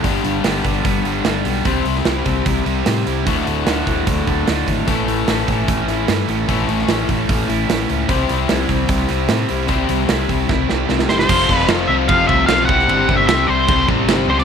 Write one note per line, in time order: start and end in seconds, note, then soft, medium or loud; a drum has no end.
0.03 0.18 G1 medium
0.03 0.22 G2 medium
0.03 1.05 G2 medium
0.03 1.64 D3 medium
0.03 0.23 D3 medium
0.03 1.64 G3 medium
0.03 0.24 G3 loud
0.03 1.64 B3 medium
0.03 1.65 D4 loud
0.03 1.65 G4 medium
0.03 kick medium
0.03 open hi-hat medium
0.23 0.39 G1 medium
0.23 0.43 G2 medium
0.23 0.44 D3 medium
0.23 0.45 G3 medium
0.23 open hi-hat medium
0.44 0.59 G1 medium
0.44 0.63 G2 medium
0.44 0.64 D3 medium
0.44 0.65 G3 medium
0.44 0.83 B3 medium
0.44 snare loud
0.44 open hi-hat medium
0.64 0.79 G1 medium
0.64 0.83 G2 medium
0.64 0.84 D3 medium
0.64 1.24 G3 medium
0.64 0.84 G3 medium
0.64 kick medium
0.64 open hi-hat soft
0.84 0.99 G1 loud
0.84 1.04 G2 medium
0.84 1.04 D3 loud
0.84 1.05 G3 loud
0.84 1.43 B3 medium
0.84 kick loud
0.84 open hi-hat medium
1.04 1.19 G1 medium
1.04 1.24 G2 medium
1.04 1.24 D3 medium
1.04 1.25 G3 medium
1.04 1.65 D4 medium
1.04 open hi-hat soft
1.25 1.39 G1 medium
1.25 1.44 G2 medium
1.25 1.44 D3 medium
1.25 1.65 G3 medium
1.25 1.45 G3 loud
1.25 snare loud
1.25 open hi-hat medium
1.44 1.59 B1 medium
1.44 1.64 G2 medium
1.44 1.64 D3 medium
1.44 1.64 G3 medium
1.44 1.65 B3 medium
1.44 open hi-hat medium
1.65 1.80 C2 medium
1.65 2.66 C3 medium
1.65 1.85 C3 medium
1.65 3.26 G3 medium
1.65 1.85 G3 medium
1.65 3.26 C4 medium
1.65 1.86 C4 medium
1.65 3.26 E4 medium
1.65 3.26 G4 medium
1.65 3.26 C5 medium
1.65 kick loud
1.65 open hi-hat medium
1.85 1.99 C2 medium
1.85 2.04 C3 medium
1.85 2.05 G3 medium
1.85 2.05 C4 medium
1.85 open hi-hat medium
1.96 snare soft
2.05 2.19 C2 medium
2.05 2.24 C3 medium
2.05 2.25 G3 medium
2.05 2.25 C4 loud
2.05 2.44 E4 medium
2.05 snare loud
2.05 open hi-hat medium
2.26 2.40 C2 medium
2.26 2.44 C3 medium
2.26 2.45 G3 medium
2.26 2.85 C4 medium
2.26 2.45 C4 medium
2.26 kick medium
2.26 open hi-hat soft
2.45 2.60 C2 medium
2.45 2.64 C3 medium
2.45 2.65 G3 medium
2.45 2.66 C4 loud
2.45 3.05 E4 medium
2.45 kick loud
2.45 open hi-hat medium
2.65 2.80 C2 medium
2.65 2.84 C3 medium
2.65 2.84 G3 medium
2.65 2.85 C4 medium
2.65 3.26 G4 medium
2.65 open hi-hat soft
2.85 3.00 A2 medium
2.85 3.05 C3 medium
2.85 3.05 G3 loud
2.85 3.27 C4 medium
2.85 3.06 C4 loud
2.85 snare loud
2.85 open hi-hat medium
3.06 3.20 C2 medium
3.06 3.25 C3 medium
3.06 3.25 G3 medium
3.06 3.26 C4 medium
3.06 3.26 E4 medium
3.06 open hi-hat soft
3.26 3.41 D1 medium
3.26 3.45 D2 medium
3.26 4.27 D2 medium
3.26 3.45 A2 medium
3.26 4.85 A2 medium
3.26 3.46 D3 medium
3.26 4.87 D3 loud
3.26 4.88 A3 medium
3.26 4.87 F#4 medium
3.26 kick loud
3.26 open hi-hat medium
3.46 3.61 D1 medium
3.46 3.65 D2 medium
3.46 3.66 A2 medium
3.46 3.66 D3 medium
3.46 open hi-hat medium
3.66 3.81 D1 medium
3.66 3.86 D2 medium
3.66 3.87 A2 medium
3.66 4.05 D3 medium
3.66 3.87 D3 medium
3.66 snare loud
3.66 open hi-hat medium
3.87 4.01 D1 medium
3.87 4.06 D2 medium
3.87 4.46 A2 medium
3.87 4.07 A2 medium
3.87 4.07 D3 medium
3.87 kick medium
3.87 open hi-hat soft
4.06 4.21 D1 medium
4.06 4.26 D2 medium
4.06 4.27 A2 loud
4.06 4.66 D3 medium
4.06 4.27 D3 medium
4.06 kick loud
4.06 open hi-hat medium
4.27 4.41 D1 medium
4.27 4.46 D2 medium
4.27 4.47 A2 medium
4.27 4.47 D3 medium
4.27 5.28 A3 medium
4.27 kick medium
4.27 open hi-hat soft
4.47 4.62 D1 medium
4.47 4.66 D2 medium
4.47 4.87 A2 medium
4.47 4.67 A2 medium
4.47 4.67 D3 medium
4.47 snare loud
4.47 open hi-hat medium
4.67 4.82 G#1 medium
4.67 4.86 D2 medium
4.67 4.86 A2 medium
4.67 4.88 D3 medium
4.67 4.87 D3 medium
4.67 kick medium
4.67 open hi-hat soft
4.87 5.02 A1 medium
4.87 5.07 A2 medium
4.87 5.88 A2 medium
4.87 5.08 E3 medium
4.87 6.48 E3 medium
4.87 6.47 A3 medium
4.87 5.08 A3 loud
4.87 6.47 C#4 medium
4.87 6.49 E4 medium
4.87 6.48 A4 medium
4.87 kick loud
4.87 open hi-hat medium
5.08 5.22 A1 medium
5.08 5.28 A2 medium
5.08 5.28 E3 medium
5.08 5.29 A3 medium
5.08 open hi-hat soft
5.28 5.42 A1 medium
5.28 5.47 A2 medium
5.28 5.48 E3 medium
5.28 5.49 A3 loud
5.28 5.67 C#4 medium
5.28 snare loud
5.28 open hi-hat medium
5.48 5.62 A1 medium
5.48 5.67 A2 medium
5.48 5.69 E3 medium
5.48 6.07 A3 medium
5.48 5.68 A3 medium
5.48 kick medium
5.48 open hi-hat soft
5.68 5.82 A1 medium
5.68 5.87 A2 medium
5.68 5.89 E3 loud
5.68 5.88 A3 loud
5.68 6.27 C#4 medium
5.68 kick loud
5.68 open hi-hat medium
5.88 6.02 A1 medium
5.88 6.08 A2 medium
5.88 6.10 E3 medium
5.88 6.09 A3 medium
5.88 7.48 E4 medium
5.88 snare soft
5.88 open hi-hat soft
6.08 6.22 G2 medium
6.08 6.28 A2 medium
6.08 6.30 E3 medium
6.08 7.08 A3 medium
6.08 6.29 A3 medium
6.08 snare loud
6.08 open hi-hat medium
6.28 6.42 A1 medium
6.28 6.48 A2 medium
6.28 6.49 E3 medium
6.28 6.49 A3 medium
6.28 6.88 C#4 medium
6.28 open hi-hat soft
6.47 6.62 A1 medium
6.47 7.48 A2 medium
6.47 6.68 A2 medium
6.47 8.08 E3 medium
6.47 6.70 E3 loud
6.47 8.08 A3 medium
6.47 6.69 A3 loud
6.47 8.08 C#4 medium
6.47 8.09 E4 medium
6.47 8.08 A4 medium
6.47 kick medium
6.47 open hi-hat medium
6.68 6.82 A1 medium
6.68 6.88 A2 medium
6.68 6.89 E3 medium
6.68 6.89 A3 loud
6.68 open hi-hat medium
6.79 snare soft
6.88 7.02 A1 medium
6.88 7.09 A2 medium
6.88 7.10 E3 medium
6.88 7.10 A3 loud
6.88 7.27 C#4 medium
6.88 snare loud
6.88 open hi-hat medium
7.09 7.23 A1 medium
7.09 7.29 A2 medium
7.09 7.30 E3 medium
7.09 7.67 A3 medium
7.09 7.30 A3 medium
7.09 kick medium
7.09 open hi-hat medium
7.28 7.43 A1 loud
7.28 7.48 A2 medium
7.28 7.49 E3 medium
7.28 7.49 A3 loud
7.28 7.87 C#4 medium
7.28 kick loud
7.28 open hi-hat medium
7.49 7.63 A1 medium
7.49 7.69 A2 medium
7.49 7.70 E3 medium
7.49 7.70 A3 medium
7.49 8.49 E4 medium
7.49 open hi-hat medium
7.68 7.83 A1 medium
7.68 7.88 A2 medium
7.68 7.89 E3 medium
7.68 8.09 A3 medium
7.68 7.89 A3 medium
7.68 snare loud
7.68 open hi-hat medium
7.88 8.03 C#2 medium
7.88 8.08 A2 medium
7.88 8.09 E3 medium
7.88 8.08 A3 medium
7.88 8.09 C#4 medium
7.88 open hi-hat medium
8.08 8.23 C2 medium
8.08 9.09 C3 medium
8.08 8.29 C3 medium
8.08 9.67 G3 medium
8.08 8.29 G3 loud
8.08 9.68 C4 loud
8.08 8.30 C4 loud
8.08 9.68 E4 medium
8.08 9.68 G4 loud
8.08 9.69 C5 medium
8.08 kick loud
8.08 open hi-hat medium
8.29 8.44 C2 loud
8.29 8.48 C3 medium
8.29 8.49 G3 medium
8.29 8.50 C4 medium
8.29 open hi-hat medium
8.49 8.64 C2 medium
8.49 8.68 C3 medium
8.49 8.69 G3 medium
8.49 8.70 C4 medium
8.49 8.87 E4 medium
8.49 snare loud
8.49 open hi-hat medium
8.69 8.83 C2 medium
8.69 8.88 C3 medium
8.69 8.88 G3 medium
8.69 9.29 C4 medium
8.69 8.89 C4 medium
8.69 kick medium
8.69 open hi-hat soft
8.89 9.03 C2 loud
8.89 9.08 C3 loud
8.89 9.09 G3 loud
8.89 9.10 C4 loud
8.89 9.48 E4 medium
8.89 kick loud
8.89 open hi-hat medium
9.08 9.24 C2 medium
9.08 9.28 C3 medium
9.08 9.29 G3 medium
9.08 9.30 C4 medium
9.08 10.09 G4 medium
9.08 snare soft
9.08 open hi-hat soft
9.29 9.43 A2 medium
9.29 9.49 C3 medium
9.29 9.49 G3 medium
9.29 10.28 C4 medium
9.29 9.50 C4 medium
9.29 snare loud
9.29 open hi-hat medium
9.49 9.63 C2 medium
9.49 9.68 C3 medium
9.49 9.69 G3 medium
9.49 9.69 C4 medium
9.49 10.08 E4 medium
9.49 open hi-hat soft
9.68 9.83 C2 loud
9.68 9.88 C3 medium
9.68 10.69 C3 medium
9.68 11.28 G3 medium
9.68 9.88 G3 medium
9.68 11.28 C4 medium
9.68 9.89 C4 medium
9.68 11.28 E4 medium
9.68 11.28 G4 loud
9.68 11.28 C5 loud
9.68 kick medium
9.68 open hi-hat medium
9.89 10.03 C2 loud
9.89 10.07 C3 medium
9.89 10.07 G3 medium
9.89 10.08 C4 loud
9.89 open hi-hat medium
10.08 10.23 C2 medium
10.08 10.27 C3 medium
10.08 10.28 G3 loud
10.08 10.28 C4 loud
10.08 10.48 E4 medium
10.08 snare loud
10.08 open hi-hat medium
10.29 10.43 C2 medium
10.29 10.47 C3 medium
10.29 10.48 G3 medium
10.29 10.48 C4 medium
10.29 10.88 C4 medium
10.29 kick medium
10.29 open hi-hat soft
10.48 10.63 C2 medium
10.48 10.67 C3 medium
10.48 10.68 G3 medium
10.48 10.69 C4 loud
10.48 11.08 E4 medium
10.48 kick loud
10.48 snare medium
10.68 10.83 C2 medium
10.68 10.88 C3 medium
10.68 10.88 G3 medium
10.68 10.89 C4 medium
10.68 11.29 G4 medium
10.68 snare medium
10.89 11.03 C2 medium
10.89 11.08 C3 medium
10.89 11.09 G3 medium
10.89 11.29 C4 medium
10.89 11.09 C4 loud
10.89 snare medium
10.99 snare medium
11.09 11.23 F#1 medium
11.09 11.28 C3 medium
11.09 11.28 G3 medium
11.09 11.28 C4 medium
11.09 11.29 E4 medium
11.09 11.18 C5 medium
11.09 snare loud
11.19 11.53 C5 medium
11.19 snare medium
11.29 11.45 F1 medium
11.29 11.49 F2 medium
11.29 11.88 F2 medium
11.29 11.49 C3 medium
11.29 11.88 C3 medium
11.29 11.49 F3 loud
11.29 11.89 F3 loud
11.29 11.89 A3 medium
11.29 11.89 C4 loud
11.29 11.88 F4 medium
11.29 kick loud
11.29 crash loud
11.29 crash medium
11.49 11.65 F1 loud
11.49 11.68 F2 medium
11.49 11.68 C3 medium
11.49 11.69 F3 medium
11.49 kick medium
11.53 11.66 B4 medium
11.59 snare soft
11.69 11.85 F1 medium
11.69 11.88 F2 medium
11.69 11.89 C3 loud
11.69 11.89 F3 loud
11.69 snare loud
11.69 crash medium
11.88 12.05 C2 loud
11.88 12.07 F2 loud
11.88 12.08 C3 loud
11.88 12.68 C3 medium
11.88 12.08 F3 loud
11.88 12.68 F3 medium
11.88 12.68 A3 medium
11.88 12.68 C4 medium
11.88 12.68 F4 medium
11.88 11.93 E5 medium
11.92 12.68 F2 medium
12.08 12.25 F1 loud
12.08 12.28 F2 medium
12.08 12.28 C3 loud
12.08 12.29 F3 loud
12.08 12.27 F5 loud
12.08 kick loud
12.08 crash medium
12.28 12.45 C2 medium
12.28 12.48 F2 loud
12.28 12.48 C3 loud
12.28 12.49 F3 loud
12.28 12.46 E5 loud
12.28 kick medium
12.46 12.65 B1 medium
12.46 12.68 F2 medium
12.46 12.68 C3 medium
12.46 12.68 F3 medium
12.46 12.65 F5 loud
12.46 snare loud
12.46 crash medium
12.65 12.85 C2 medium
12.65 13.27 C3 medium
12.65 12.88 C3 loud
12.65 13.16 F#5 loud
12.65 kick loud
12.69 13.28 G3 medium
12.69 12.88 G3 loud
12.69 12.89 C4 loud
12.69 13.28 C4 medium
12.69 13.28 E4 loud
12.69 13.29 G4 loud
12.69 13.29 C5 loud
12.79 snare soft
12.88 13.04 G1 loud
12.88 13.07 C3 loud
12.88 13.08 G3 loud
12.88 13.09 C4 loud
12.88 crash medium
13.09 13.25 G1 loud
13.09 13.27 C3 medium
13.09 13.28 G3 medium
13.09 13.29 C4 medium
13.09 kick medium
13.17 13.26 E5 medium
13.27 13.45 C2 medium
13.27 14.27 C3 medium
13.27 13.47 C3 loud
13.27 14.27 G3 medium
13.27 13.48 G3 medium
13.27 14.28 C4 medium
13.27 13.48 C4 loud
13.27 14.28 E4 medium
13.27 14.28 G4 loud
13.27 14.28 C5 loud
13.27 13.49 E5 loud
13.27 snare loud
13.27 crash medium
13.47 13.65 C2 medium
13.47 13.67 C3 medium
13.47 13.67 G3 loud
13.47 13.67 C4 loud
13.47 13.85 C5 medium
13.68 13.85 C2 medium
13.68 13.87 C3 medium
13.68 13.87 G3 medium
13.68 13.88 C4 loud
13.68 kick loud
13.68 crash medium
13.88 14.04 A1 medium
13.88 14.06 C3 loud
13.88 14.07 G3 loud
13.88 14.07 C4 loud
13.88 kick medium
14.07 14.25 G1 medium
14.07 14.26 C3 medium
14.07 14.27 G3 medium
14.07 14.27 C4 medium
14.07 snare loud
14.07 crash medium
14.27 14.44 C#2 loud
14.27 14.44 C3 medium
14.27 14.44 G3 loud
14.27 14.44 C4 medium
14.27 14.39 C5 medium
14.38 14.44 D5 medium
14.38 snare soft